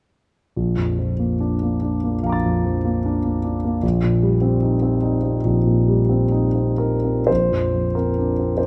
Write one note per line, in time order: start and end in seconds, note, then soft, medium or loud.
0.56 2.19 A#1 soft
0.77 1.12 F2 soft
0.99 1.33 F3 soft
1.19 1.53 A#3 soft
1.40 1.74 D4 soft
1.62 1.95 A#3 soft
1.82 2.15 D4 soft
2.04 2.36 A#3 soft
2.23 3.79 A#1 soft
2.23 3.79 F5 soft
2.23 3.80 A#5 soft
2.29 3.82 D6 soft
2.29 3.83 A6 soft
2.46 2.77 F2 soft
2.66 2.97 F3 soft
2.85 3.16 A#3 soft
3.06 3.37 D4 soft
3.25 3.56 A#3 soft
3.44 3.75 D4 soft
3.65 3.84 A#3 soft
3.83 5.40 A#1 soft
4.04 4.35 A#2 soft
4.23 4.54 G3 soft
4.42 4.74 C4 soft
4.63 4.94 D#4 soft
4.82 5.15 C4 soft
5.03 5.36 D#4 soft
5.23 5.57 C4 soft
5.45 7.25 A#1 soft
5.66 6.01 A#2 soft
5.88 6.24 G3 soft
6.09 6.47 C4 soft
6.32 6.71 D#4 soft
6.55 6.96 C4 soft
6.78 7.19 D#4 soft
6.78 7.27 A#4 soft
7.05 7.28 C4 soft
7.27 8.67 A#1 soft
7.27 7.94 C5 medium
7.51 7.87 F2 soft
7.74 8.09 F3 soft
7.95 8.30 C4 soft
7.95 8.58 A#4 soft
8.18 8.51 D4 soft
8.40 8.67 C4 soft
8.58 8.67 D4 soft
8.58 8.67 C5 soft